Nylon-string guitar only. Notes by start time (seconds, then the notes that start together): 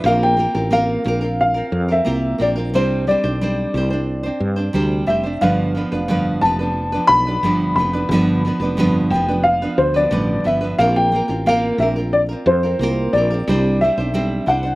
0.05 A#3 C4 F4 A#4
0.37 A#3 C4 F4 A#4
0.55 C4 F4 A#4
0.71 A#3 C4 F4 A#4
1.04 A#3 C4 F4 A#4
1.21 C4 F4 A#4
1.54 C4 F4 A#4
1.88 C4 F4 A#4
2.05 A#3 C4 F4 A#4
2.38 A#3 C4 F4 A#4
2.56 C4 F4 A#4
2.74 C3 G3 C4 D4 C5
3.07 G3 C4 D4 C5
3.24 C4 D4 C5
3.41 G3 C4 D4 C5
3.75 G3 C4 D4 C5
3.90 C4 D4 C5
4.23 C4 D4 C5
4.56 C4 D4 C5
4.73 C3 G3 C4 D4 C5
5.07 G3 C4 D4 C5
5.23 C4 D4 C5
5.41 G2 D3 F3 B3 D4 B4
5.75 F3 B3 D4 B4
5.92 F3 B3 D4 B4
6.08 G2 D3 F3 B3 D4 B4
6.41 F3 B3 D4 B4
6.59 F3 B3 D4 B4
6.92 F3 B3 D4 B4
7.27 F3 B3 D4 B4
7.43 G2 D3 F3 B3 D4 B4
7.78 F3 B3 D4 B4
7.93 F3 B3 D4 B4
8.11 G2 D3 F3 B3 D4 B4
8.45 F3 B3 D4 B4
8.61 F3 B3 D4 B4
8.77 G2 D3 F3 B3 D4 B4
9.11 F3 B3 D4
9.15 B4
9.28 F3 B3 D4 B4
9.62 F3 B3 D4 B4
9.94 F3 B3 D4 B4
10.11 G2 D3 F3 B3 D4 B4
10.44 F3 B3 D4 B4
10.61 F3 B3 D4 B4
10.79 A#3 C4 F4 A#4
11.12 A#3 C4 F4 A#4
11.28 C4 F4 A#4
11.46 A#3 C4 F4 A#4
11.79 A#3 C4 F4 A#4
11.96 C4 F4 A#4
12.29 C4 F4 A#4
12.63 C4 F4 A#4
12.81 A#3 C4 F4 A#4
13.14 A#3 C4 F4 A#4
13.30 C4 F4 A#4
13.47 C3 G3 C4 D4 C5
13.81 G3 C4 D4 C5
13.98 C4 D4 C5
14.14 G3 C4 D4 C5
14.46 G3 C4 D4 C5
14.63 C4 D4 C5